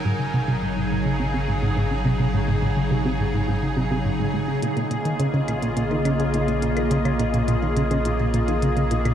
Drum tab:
HH |----------------|----------------|xxxxx-xxx-xxxxxx|xxxxx-xxx-xxxxxx|
CL |----------------|----------------|------x---x----x|-x-------------x|